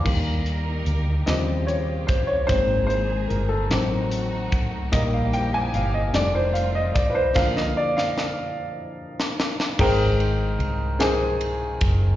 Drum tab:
CC |x-----------|------------|------------|x-----------|
RD |------------|------------|------------|------------|
HH |--x-x-x-x-x-|x-x-x-x-x-x-|x-x-x-x-x-x-|------------|
SD |------o-----|------o-----|------o-----|oo-oo----ooo|
BD |o---------o-|o---------o-|o---------o-|o-----------|

CC |x-----------|
RD |--b-b-b-b-b-|
HH |------------|
SD |------o-----|
BD |o---------o-|